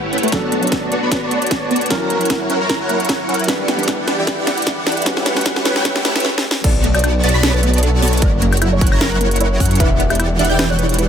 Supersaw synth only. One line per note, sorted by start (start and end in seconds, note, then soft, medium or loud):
0.00 0.11 A3 medium
0.00 0.11 E4 medium
0.00 0.11 G4 medium
0.00 0.11 B4 medium
0.00 0.11 C#5 medium
0.00 0.11 F#5 loud
0.13 0.30 A3 medium
0.13 0.30 E4 medium
0.13 0.30 G4 medium
0.13 0.30 B4 medium
0.13 0.30 C#5 medium
0.13 0.30 F#5 medium
0.32 0.90 B3 medium
0.32 0.90 F#4 medium
0.32 0.90 C#5 medium
0.32 0.90 D5 medium
0.32 0.90 A5 medium
0.92 1.00 B3 medium
0.92 1.00 F#4 medium
0.92 1.00 C#5 medium
0.92 1.00 D5 medium
0.92 1.00 A5 medium
1.02 1.09 B3 medium
1.02 1.09 F#4 medium
1.02 1.09 C#5 medium
1.02 1.09 D5 medium
1.02 1.09 B5 loud
1.11 1.20 B3 loud
1.11 1.20 F#4 medium
1.11 1.20 C#5 medium
1.11 1.20 D5 medium
1.11 1.20 B5 loud
1.22 1.69 B3 medium
1.22 1.69 F#4 medium
1.22 1.69 C#5 medium
1.22 1.69 D5 medium
1.22 1.69 A5 loud
1.71 1.88 B3 medium
1.71 1.88 F#4 medium
1.71 1.88 C#5 medium
1.71 1.88 D5 medium
1.71 1.88 A5 medium
1.91 2.48 F#3 medium
1.91 2.48 E4 medium
1.91 2.48 A#4 medium
1.91 2.48 C#5 medium
1.91 2.48 F#5 medium
2.50 2.58 F#3 medium
2.50 2.58 E4 medium
2.50 2.58 A#4 medium
2.50 2.58 C#5 medium
2.50 2.58 F#5 medium
2.60 2.67 F#3 loud
2.60 2.67 E4 medium
2.60 2.67 A#4 medium
2.60 2.67 C#5 medium
2.60 2.67 A#5 loud
2.70 2.78 F#3 loud
2.70 2.78 E4 medium
2.70 2.78 A#4 medium
2.70 2.78 C#5 medium
2.70 2.78 A#5 loud
2.80 3.27 F#3 medium
2.80 3.27 E4 medium
2.80 3.27 A#4 medium
2.80 3.27 C#5 medium
2.80 3.27 F#5 loud
3.29 3.46 F#3 medium
3.29 3.46 E4 medium
3.29 3.46 A#4 medium
3.29 3.46 C#5 medium
3.29 3.46 F#5 medium
3.48 4.06 E3 medium
3.48 4.06 G4 medium
3.48 4.06 D5 medium
4.08 4.16 E3 medium
4.08 4.16 E4 medium
4.08 4.16 G4 medium
4.08 4.16 D5 medium
4.08 4.16 F#5 medium
4.18 4.25 E3 loud
4.18 4.25 E4 medium
4.18 4.25 G4 medium
4.18 4.25 D5 medium
4.18 4.25 G5 loud
4.27 4.36 E3 loud
4.27 4.35 E4 medium
4.27 4.35 G4 medium
4.27 4.35 D5 medium
4.27 4.35 G5 loud
4.38 4.85 E3 medium
4.38 4.84 E4 medium
4.38 4.85 G4 medium
4.38 4.85 D5 medium
4.38 4.85 F#5 loud
4.87 5.04 E3 medium
4.87 5.04 E4 medium
4.87 5.04 G4 medium
4.87 5.04 D5 medium
4.87 5.04 F#5 medium
5.06 5.63 A3 medium
5.06 5.63 E4 medium
5.06 5.63 G4 medium
5.06 5.63 B4 medium
5.06 5.63 C#5 medium
5.06 5.63 F#5 medium
5.65 5.74 A3 medium
5.65 5.74 E4 medium
5.65 5.74 G4 medium
5.65 5.74 B4 medium
5.65 5.74 C#5 medium
5.65 5.74 F#5 medium
5.76 5.83 A3 loud
5.76 5.83 E4 medium
5.76 5.83 G4 medium
5.76 5.83 B4 loud
5.76 5.83 C#5 loud
5.76 5.83 G5 loud
5.85 5.93 A3 loud
5.85 5.93 E4 medium
5.85 5.93 G4 medium
5.85 5.93 B4 loud
5.85 5.93 C#5 medium
5.85 5.93 G5 loud
5.95 6.03 A3 medium
5.95 6.03 E4 medium
5.95 6.03 G4 medium
5.95 6.03 B4 medium
5.95 6.03 C#5 medium
5.95 6.03 F#5 loud
6.05 6.13 A3 medium
6.05 6.13 E4 medium
6.05 6.13 G4 medium
6.05 6.13 B4 medium
6.05 6.13 C#5 medium
6.05 6.13 A5 medium
6.15 6.25 A3 medium
6.15 6.25 E4 medium
6.15 6.25 G4 medium
6.15 6.25 B4 medium
6.15 6.25 C#5 medium
6.15 6.25 E5 medium
6.64 7.21 B3 medium
6.64 7.21 F#4 medium
6.64 7.21 C#5 medium
6.64 7.21 D5 medium
6.64 7.21 A5 medium
7.23 7.31 B3 medium
7.23 7.31 F#4 medium
7.23 7.31 C#5 medium
7.23 7.31 D5 medium
7.23 7.32 A5 medium
7.34 7.41 B3 medium
7.34 7.41 F#4 medium
7.34 7.41 C#5 medium
7.34 7.41 D5 loud
7.34 7.41 B5 loud
7.43 7.51 B3 loud
7.43 7.51 F#4 loud
7.43 7.51 C#5 medium
7.43 7.51 D5 medium
7.43 7.51 B5 loud
7.54 8.00 B3 medium
7.54 8.00 F#4 medium
7.54 8.00 C#5 medium
7.54 8.00 D5 medium
7.54 8.00 A5 medium
8.02 8.20 B3 medium
8.02 8.20 F#4 medium
8.02 8.20 C#5 medium
8.02 8.20 D5 medium
8.02 8.20 A5 medium
8.22 8.79 F#3 medium
8.22 8.79 E4 medium
8.22 8.79 A#4 medium
8.22 8.79 C#5 medium
8.22 8.79 F#5 medium
8.81 8.89 F#3 medium
8.81 8.89 E4 medium
8.81 8.89 A#4 medium
8.81 8.89 C#5 medium
8.81 8.89 F#5 medium
8.92 8.99 F#3 loud
8.92 8.99 E4 medium
8.92 8.99 A#4 medium
8.92 8.99 C#5 medium
8.92 8.99 A#5 loud
9.01 9.09 F#3 loud
9.01 9.09 E4 medium
9.01 9.09 A#4 medium
9.01 9.09 C#5 medium
9.01 9.09 A#5 loud
9.12 9.58 F#3 medium
9.12 9.58 E4 medium
9.12 9.58 A#4 medium
9.12 9.58 C#5 medium
9.12 9.58 F#5 loud
9.60 9.78 F#3 medium
9.60 9.78 E4 medium
9.60 9.78 A#4 medium
9.60 9.78 C#5 medium
9.60 9.78 F#5 medium
9.80 10.37 E3 medium
9.80 10.37 E4 medium
9.80 10.37 G4 medium
9.80 10.37 D5 medium
9.80 10.37 F#5 medium
10.39 10.47 E3 medium
10.39 10.47 E4 medium
10.39 10.47 G4 medium
10.39 10.47 D5 medium
10.39 10.47 F#5 medium
10.50 10.57 E3 loud
10.50 10.57 E4 medium
10.50 10.57 G4 medium
10.50 10.57 D5 medium
10.50 10.57 G5 loud
10.59 10.67 E3 loud
10.59 10.67 E4 medium
10.59 10.67 G4 medium
10.59 10.67 D5 medium
10.59 10.67 G5 loud
10.70 11.09 E3 medium
10.70 11.09 E4 medium
10.70 11.09 G4 medium
10.70 11.09 D5 medium
10.70 11.09 F#5 loud